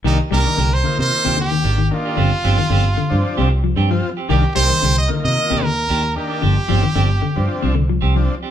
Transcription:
X:1
M:4/4
L:1/16
Q:"Swing 16ths" 1/4=113
K:Cm
V:1 name="Trumpet"
E2 B3 c2 c3 G4 F2- | F8- F2 z6 | G2 c3 e2 e3 B4 G2- | G8- G2 z6 |]
V:2 name="Clean electric guitar"
[E,B,DG] z [E,B,DG] z [E,B,DG] z4 [E,B,DG] z2 [E,B,DG] z2 [B,DG] | [F,CDG] z [F,CDG] z [F,CDG] z4 [F,CDG] z2 [F,CDG] z2 [CG] | [E,B,DG] z [E,B,DG] z [E,DG] z4 [E,DG] z2 [E,B,DG] z2 [B,D] | [F,DG] z [F,CDG] z [F,CDG] z4 [F,CD] z2 [F,CG] z2 [CDG] |]
V:3 name="Transistor combo organ"
[E,B,D] z [E,B,D]2 z2 [E,B,F]4 z4 [E,B,D]2 | z6 z [F,CD]3 z3 [F,CF] z2 | [E,B,D] z [E,B,C]2 z2 [E,B,F]4 z4 [E,B,D]2 | z6 z [F,CD]3 z3 [F,CD] z2 |]
V:4 name="Clean electric guitar" clef=bass
E,2 G, E, D,2 D,2 z C, D, E,2 E,2 z | D,2 z E, D,2 D,2 z C, z F,2 F,2 z | E,2 G, E, D,2 D,2 z C, D, z4 z | D,2 F, E, D,2 D,2 z C, D, F,2 F,2 z |]
V:5 name="Fingered electric bass" clef=bass
C,, z C,, z C,,2 z C, z E,,3 A,,,2 z2 | G,,, z G,,, z G,,,2 z G,, z C,,3 G,,2 z2 | C,, z C,, z C,,2 z C, z E,,3 E,,2 z2 | G,,, z G,,, z G,,,2 z G,, z C,,3 C,,2 z2 |]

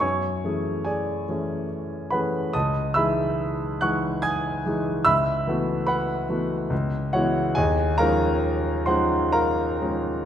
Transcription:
X:1
M:3/4
L:1/8
Q:1/4=71
K:C#m
V:1 name="Grand piano"
[cgc']2 [G=dg]2 z [Bfb] | [dad'] [ebe']2 [fc'f'] [gd'g']2 | [ebe']2 [Bfb]2 z [Fcf] | [K:Ebdor] [Aea] [Bfb]2 [cgc'] [Bfb]2 |]
V:2 name="Grand piano"
F,, [E,A,CG]2 [E,A,CG]2 [E,A,CG] | C,, [E,G,DG]2 [E,G,DG]2 [E,G,DG] | C,, [E,A,B,F]2 [E,A,B,F] C,, [E,G,B,E] | [K:Ebdor] E,, [F,A,DE]2 [F,A,DE]2 [F,A,DE] |]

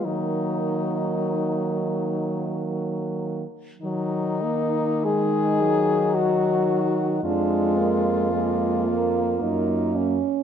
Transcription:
X:1
M:3/4
L:1/16
Q:1/4=54
K:Ebm
V:1 name="French horn"
E8 z4 | E4 A4 G4 | F8- F2 z2 |]
V:2 name="French horn"
B,8- B,2 z2 | z4 E8 | =D2 B,2 A,2 B,2 E2 _D2 |]
V:3 name="French horn" clef=bass
G,8- G,2 z2 | G,2 B,2 A,2 G,6 | A,4 B,4 B,3 z |]
V:4 name="French horn" clef=bass
E,8- E,2 z2 | E,12 | F,,8 G,,3 z |]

